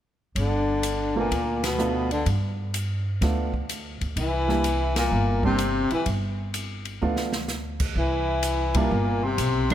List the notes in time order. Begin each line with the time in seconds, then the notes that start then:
0.35 G1 D3 D4, kick, ride
0.83 hi-hat pedal, ride
1.16 A#2 A3 A#3 B3 D4 F4
1.31 D2, kick, ride
1.64 B2 B3, snare, ride
1.78 A3 B3 D4 F4, hi-hat pedal
2.11 D3 D4, ride
2.26 G2, kick, ride
2.74 hi-hat pedal, ride
3.21 D2 A3 B3 D4 F4, kick, snare, ride
3.54 kick
3.69 hi-hat pedal, ride
4.01 D2, ride
4.16 C2 E3 E4, kick, ride
4.48 G3 A#3 D4 E4, snare
4.64 hi-hat pedal, ride
4.96 A#2 A#3, snare, ride
5.12 G1
5.43 C3 G3 A#3 C4 D4 G4, kick
5.58 hi-hat pedal, ride
5.91 E3 E4, muted upright bass stroke, ride
6.06 G1, kick, ride
6.54 hi-hat pedal, ride
6.85 ride
7.01 D2 A3 B3 D4 F4
7.16 snare
7.32 snare
7.48 snare, hi-hat pedal
7.80 kick, crash
7.95 C2 E3 E4, kick
8.43 hi-hat pedal, ride
8.74 A#2 G3 A#3 D4 E4, kick, ride
8.91 G1
9.23 C3 C4
9.38 B1, hi-hat pedal, ride
9.70 G3 A#3 D4, ride